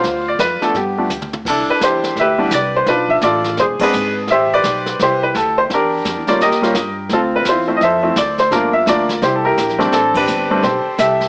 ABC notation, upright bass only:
X:1
M:4/4
L:1/8
Q:"Swing" 1/4=170
K:G
V:1 name="Upright bass" clef=bass
D,,2 =F,, z G,,2 D,,2 | [K:C] C,, z E,,2 D,,2 C,,2 | B,,,2 A,,,2 E,,, z ^G,,,2 | A,,,2 B,,,2 C,,2 D,,2 |
E,,2 (3F,, E,, D,, _E,,2 G,,2 | D,,2 E,,2 F,,2 D,,2 | G,,,2 D,,2 C,,2 _B,,,2 | A,,,2 G,,,2 B,,, z C,,2 |]